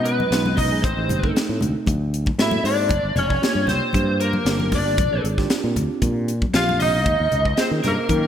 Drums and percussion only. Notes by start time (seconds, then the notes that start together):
0.05 closed hi-hat
0.20 high conga
0.32 snare, closed hi-hat
0.46 high conga
0.57 kick, open hi-hat, low conga
0.84 kick, closed hi-hat
1.09 closed hi-hat, high conga, low conga
1.23 kick
1.36 snare, closed hi-hat
1.61 closed hi-hat, low conga
1.86 kick, closed hi-hat, high conga
2.14 closed hi-hat
2.26 kick, high conga
2.39 snare, closed hi-hat
2.51 high conga
2.65 open hi-hat
2.89 kick, closed hi-hat, low conga
3.16 closed hi-hat, low conga
3.30 kick
3.43 snare, closed hi-hat
3.67 snare, closed hi-hat, low conga
3.93 kick, closed hi-hat, high conga
4.21 closed hi-hat
4.33 high conga
4.46 snare, closed hi-hat
4.60 high conga
4.72 kick, open hi-hat, low conga
4.98 kick, closed hi-hat, low conga
5.25 closed hi-hat
5.38 kick, snare
5.50 snare, closed hi-hat
5.76 closed hi-hat, low conga
6.02 kick, closed hi-hat, high conga
6.28 closed hi-hat
6.42 kick, high conga
6.54 snare, closed hi-hat
6.69 high conga
6.80 open hi-hat, low conga
7.06 kick, closed hi-hat, low conga
7.32 closed hi-hat, low conga
7.45 kick
7.57 snare, closed hi-hat
7.84 snare, closed hi-hat, low conga
8.09 kick, closed hi-hat, high conga